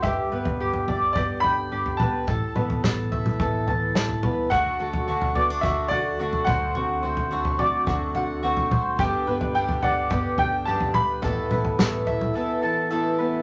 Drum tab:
SD |----------------|----o-------o---|----------------|----------------|
T2 |--------------o-|--o-o--o------o-|--------------o-|--------------o-|
FT |o--o-oo-o-o--oo-|o--o--o-o-o--oo-|o--o-oo-o-o--oo-|o--o-oo-o-o--oo-|
BD |o-------o-------|o---o---o-------|o-------o-----o-|--------o-------|

SD |----------------|----o-----------|
T2 |--------------o-|--o-o--o--------|
FT |o--o-oo-o-o--oo-|o--o--o---------|
BD |o-------o-------|o---o-----------|